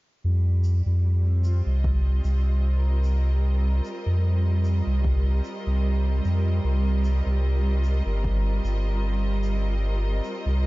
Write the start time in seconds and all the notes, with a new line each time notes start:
0.24 F2 G3
0.64 shaker
0.86 F2
1.23 C4
1.44 F4, shaker
1.65 C2 D#5
1.84 kick
2.24 C2, shaker
2.76 A#4
3.04 shaker
3.85 shaker
4.06 F2
4.65 shaker
4.87 C2
5.05 kick
5.44 shaker
5.67 C2
6.25 F2, shaker
6.64 C2
7.05 shaker
7.26 C2
7.84 shaker
8.06 G1
8.24 kick
8.64 G1, shaker
9.43 shaker
10.24 shaker
10.46 C2